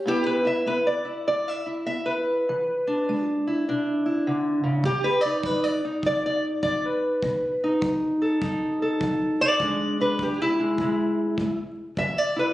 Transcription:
0.06 steel-string acoustic guitar G#2 B3 E4 G4
0.26 steel-string acoustic guitar B4
0.45 steel-string acoustic guitar E4 E5
0.66 steel-string acoustic guitar B3 B4
0.87 steel-string acoustic guitar D5
1.05 steel-string acoustic guitar E4
1.28 steel-string acoustic guitar G#2 D5
1.48 steel-string acoustic guitar E5
1.66 steel-string acoustic guitar E4
1.86 steel-string acoustic guitar B3 E5
2.06 steel-string acoustic guitar B4
2.49 steel-string acoustic guitar E3
2.87 steel-string acoustic guitar D4
3.09 steel-string acoustic guitar G#3
3.47 steel-string acoustic guitar E4
3.69 steel-string acoustic guitar B2 D4
4.06 steel-string acoustic guitar E4
4.27 steel-string acoustic guitar D3
4.64 steel-string acoustic guitar C#3
4.84 steel-string acoustic guitar B2 G4, kick
5.04 steel-string acoustic guitar B4
5.21 steel-string acoustic guitar D5
5.25 steel-string acoustic guitar D#4
5.43 steel-string acoustic guitar F#3 B4, kick
5.64 steel-string acoustic guitar D5
5.85 steel-string acoustic guitar D#4
6.03 steel-string acoustic guitar D5, kick
6.07 steel-string acoustic guitar F#3
6.26 steel-string acoustic guitar D5
6.63 steel-string acoustic guitar F#3 D5, kick
6.86 steel-string acoustic guitar B4
7.22 steel-string acoustic guitar B2, kick
7.64 steel-string acoustic guitar D#4
7.81 steel-string acoustic guitar F#3, kick
8.22 steel-string acoustic guitar A4
8.41 steel-string acoustic guitar F#3 D#4, kick
8.82 steel-string acoustic guitar A4
9.01 steel-string acoustic guitar F#3, kick
9.41 steel-string acoustic guitar D5
9.60 steel-string acoustic guitar E3 G#3 D4, kick
10.01 steel-string acoustic guitar D4 B4
10.19 steel-string acoustic guitar G#3 G4, kick
10.42 steel-string acoustic guitar E4
10.60 steel-string acoustic guitar G#3
10.78 steel-string acoustic guitar B2 G#3, kick
11.38 steel-string acoustic guitar G#3, kick
11.97 steel-string acoustic guitar E3 E5, kick
12.18 steel-string acoustic guitar D5
12.36 steel-string acoustic guitar E4 B4

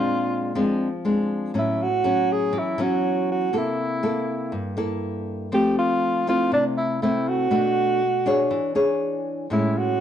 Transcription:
Already playing: nylon-string guitar A#2 G#3 C4 D4, alto saxophone F4
0.55 nylon-string guitar F3 G#3 C4 D4
1.05 nylon-string guitar G#3 C4 D4
1.54 nylon-string guitar A2 F#3 B3 C#4
1.59 alto saxophone E4
1.83 alto saxophone F#4
2.04 nylon-string guitar F#3 B3 C#4
2.32 alto saxophone G#4
2.53 nylon-string guitar E3
2.58 alto saxophone E4
2.78 nylon-string guitar F#3 B3 C#4
2.82 alto saxophone F#4
3.32 alto saxophone F#4
3.53 nylon-string guitar C3 A#3 E4 A4
3.58 alto saxophone E4
4.03 nylon-string guitar A#3 E4 A4
4.52 nylon-string guitar G2
4.77 nylon-string guitar A#3 E4 A4
5.52 nylon-string guitar F3 A3 C4, alto saxophone G4
5.79 alto saxophone F4
6.27 nylon-string guitar A3 C4 E4, alto saxophone F4
6.52 nylon-string guitar C3, alto saxophone D4
6.77 alto saxophone E4
7.02 nylon-string guitar A3 C4 E4, alto saxophone E4
7.29 alto saxophone F#4
7.51 nylon-string guitar B2 A3 D4 F#4
8.26 nylon-string guitar D4 G#4 C#5
8.51 nylon-string guitar E3
8.75 nylon-string guitar D4 G#4 C#5
9.50 nylon-string guitar A2 G#3 C#4 E4, alto saxophone E4
9.78 alto saxophone F#4

